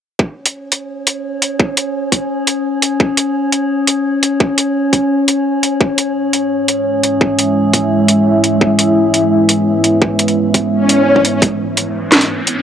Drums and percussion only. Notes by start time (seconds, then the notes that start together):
0.19 kick
0.46 closed hi-hat
0.72 closed hi-hat
1.07 closed hi-hat
1.42 closed hi-hat
1.60 kick
1.77 closed hi-hat
2.12 kick, closed hi-hat
2.47 closed hi-hat
2.82 closed hi-hat
3.00 kick
3.17 closed hi-hat
3.52 closed hi-hat
3.87 closed hi-hat
4.23 closed hi-hat
4.40 kick
4.58 closed hi-hat
4.93 kick, closed hi-hat
5.28 closed hi-hat
5.63 closed hi-hat
5.81 kick
5.98 closed hi-hat
6.33 closed hi-hat
6.68 closed hi-hat
7.03 closed hi-hat
7.21 kick
7.39 closed hi-hat
7.73 kick, closed hi-hat
8.08 closed hi-hat
8.44 closed hi-hat
8.61 kick
8.79 closed hi-hat
9.14 closed hi-hat
9.49 closed hi-hat
9.84 closed hi-hat
10.02 kick
10.19 closed hi-hat
10.28 closed hi-hat
10.54 kick, closed hi-hat
10.89 closed hi-hat
11.16 kick
11.25 closed hi-hat
11.42 kick, closed hi-hat
11.77 closed hi-hat
12.12 snare, closed hi-hat
12.21 closed hi-hat
12.47 closed hi-hat